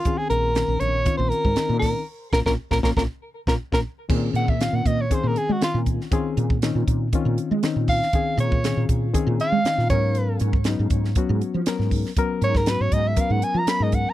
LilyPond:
<<
  \new Staff \with { instrumentName = "Soprano saxophone" } { \time 4/4 \key bes \minor \tempo 4 = 119 f'16 aes'16 bes'4 des''8. c''16 bes'4 bes'8 | r8 bes'16 bes'16 r16 bes'16 bes'16 bes'16 r8. bes'16 r16 bes'16 r8 | r8 ges''16 e''16 f''16 ges''16 ees''16 des''16 c''16 bes'16 aes'16 ges'16 f'8 r8 | r2. r8 f''8~ |
f''8 des''4 r4 f''4 des''8~ | des''8 r2. r8 | r8 des''16 bes'16 ces''16 des''16 ees''16 e''16 f''16 ges''16 aes''16 bes''16 ces'''16 ees''16 ges''16 bes''16 | }
  \new Staff \with { instrumentName = "Reed electric piano" } { \time 4/4 \key bes \minor <ees c' des' aes'>4 <ees c' des' bes'>4 <ees c' des' f'>4 <ees c' des' ees'>4 | r8 <bes des' f'>16 <bes des' f'>16 r16 <bes des' f'>16 <bes des' f'>16 <bes des' f'>16 r8. <bes des' f'>16 r16 <bes des' f'>16 r8 | <ees c' des' aes'>4 <ees c' des' f'>4 <ees c' des' aes'>4 <ees c' des' f'>4 | <ees c' des' aes'>4 <ees c' des' ees'>4 <ees c' des' f'>4 <ees c' des' ees'>4 |
<ees c' des' aes'>4 <ees c' des' aes'>4 <ees c' des' aes'>4 <ees c' des' ees'>8 <ges ces' des' bes'>8~ | <ges ces' des' bes'>4 <ges ces' des' ees'>4 <ges ces' des' ges'>4 <ges ces' des' bes'>4 | <ges ces' des' bes'>4 <ges ces' des' ges'>4 <ges ces' des' bes'>4 <ges ces' des' bes'>4 | }
  \new Staff \with { instrumentName = "Fretless electric bass" } { \clef bass \time 4/4 \key bes \minor r8 bes,,8. bes,,16 bes,,8 r16 bes,,16 r16 aes,16 r16 bes,8 r16 | r8 bes,,16 bes,,16 r16 bes,,16 bes,,16 bes,,16 r8. bes,,16 r16 bes,,16 r8 | bes,8 bes,8. bes,16 bes,8 r16 bes,16 r16 aes16 r16 bes,8 r16 | r8 bes,8. bes,16 bes,8 r16 bes,16 r16 aes16 r16 bes,8 r16 |
r8 bes,8. bes,16 bes,8 r16 bes,16 r16 aes16 r16 bes,16 aes,8~ | aes,8 aes,8. aes,16 aes,8 r16 aes,16 r16 f16 r16 aes,8 r16 | r8 aes,8. aes,16 aes,8 r16 aes,16 r16 f16 r16 aes,8 r16 | }
  \new DrumStaff \with { instrumentName = "Drums" } \drummode { \time 4/4 <hh bd>8 hh8 <hh sn>8 hh8 <hh bd>8 hh16 bd16 <hh sn>8 <hho bd sn>8 | r8 <bd sn>16 <bd sn>16 r16 <bd sn>16 <bd sn>16 <bd sn>16 r8. <bd sn>16 r16 <bd sn>8. | <cymc bd>8 hh16 bd16 <hh sn>8 <hh bd>8 <hh bd>8 hh8 <hh sn>8 <hh bd>16 sn16 | <hh bd>8 hh16 bd16 <hh sn>8 <hh bd>8 <hh bd>8 hh8 <hh sn>8 <hho bd>16 sn16 |
<hh bd>8 hh16 bd16 <hh sn>8 <hh bd>8 <hh bd>8 hh8 <hh sn>16 sn16 <hh bd>8 | hh8 hh16 bd16 <hh sn>8 <hh bd>16 sn16 <hh bd>8 hh8 <hh sn>16 sn16 <hho bd>16 sn16 | <hh bd>8 hh16 <bd sn>16 <hh sn>8 <hh bd>8 <hh bd>8 hh8 <hh sn>8 <hh bd>8 | }
>>